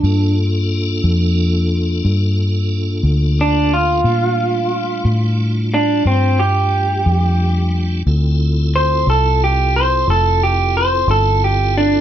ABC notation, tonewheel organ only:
X:1
M:12/8
L:1/8
Q:3/8=60
K:Gdor
V:1 name="Tonewheel organ"
[B,DFA]12 | [G,A,DF]12 | [CEFA]12 |]